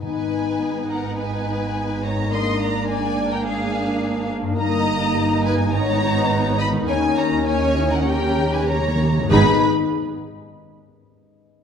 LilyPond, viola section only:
\new Staff \with { instrumentName = "Viola section" } { \time 4/4 \key gis \minor \tempo 4 = 104 << { dis'1 | d'1 | dis'1~ | dis'2 g'4. r8 |
gis'8 r2. r8 | } \\ { b1 | ais1~ | ais2 b2 | cis'2.~ cis'8 r8 |
dis'8 r2. r8 | } >> }